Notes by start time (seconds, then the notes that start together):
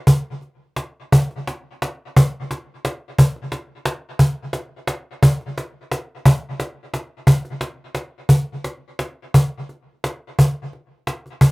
0.07 cajon bass
0.41 cajon slap
0.76 cajon slap
1.12 cajon bass
1.31 cajon slap
1.47 cajon slap
1.82 cajon slap
2.16 cajon bass
2.51 cajon slap
2.85 cajon slap
3.19 cajon bass
3.36 cajon slap
3.52 cajon slap
3.85 cajon slap
4.19 cajon bass
4.53 cajon slap
4.87 cajon slap
5.23 cajon bass
5.41 cajon slap
5.58 cajon slap
5.92 cajon slap
6.25 cajon bass
6.60 cajon slap
6.94 cajon slap
7.27 cajon bass
7.45 cajon slap
7.61 cajon slap
7.95 cajon slap
8.29 cajon bass
8.64 cajon slap
8.99 cajon slap
9.34 cajon bass
9.69 cajon slap
10.04 cajon slap
10.39 cajon bass
10.73 cajon slap
11.07 cajon slap
11.26 cajon slap
11.41 cajon bass